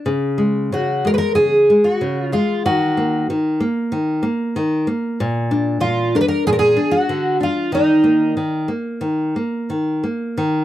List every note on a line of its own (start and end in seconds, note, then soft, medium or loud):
0.06 0.71 C#3 soft
0.38 0.71 G#3 soft
0.72 1.04 C#3 soft
0.72 1.07 F#4 medium
1.05 1.37 G#3 soft
1.05 1.10 A#4 medium
1.14 1.18 B4 medium
1.18 1.35 A#4 medium
1.35 1.69 C#3 soft
1.35 1.87 G#4 medium
1.70 2.02 G#3 soft
1.84 2.33 F#4 medium
2.01 2.33 C#3 soft
2.32 2.65 G#3 soft
2.32 2.65 F4 medium
2.66 3.29 D#3 medium
2.66 3.26 F#4 medium
2.97 3.29 A#3 soft
3.30 3.61 D#3 soft
3.60 3.92 A#3 soft
3.92 4.23 D#3 soft
4.23 4.55 A#3 soft
4.56 4.87 D#3 soft
4.87 5.18 A#3 soft
5.20 5.79 A#2 medium
5.51 5.81 D4 soft
5.80 6.12 A#2 soft
5.80 6.14 F4 medium
6.15 6.45 D4 soft
6.15 6.20 A#4 medium
6.21 6.28 B4 medium
6.28 6.46 A#4 medium
6.47 6.77 A#2 soft
6.47 6.52 G#4 medium
6.53 6.58 A#4 medium
6.59 6.94 G#4 medium
6.77 7.08 D4 soft
6.91 7.36 F#4 medium
7.09 7.40 D3 soft
7.41 7.72 D4 soft
7.41 7.74 F4 medium
7.72 8.36 D#3 medium
7.72 8.34 D#4 medium
8.04 8.35 A#3 soft
8.37 8.68 D#3 soft
8.68 9.01 A#3 soft
9.01 9.34 D#3 soft
9.36 9.69 A#3 soft
9.70 10.03 D#3 soft
10.04 10.37 A#3 soft
10.37 10.64 D#3 medium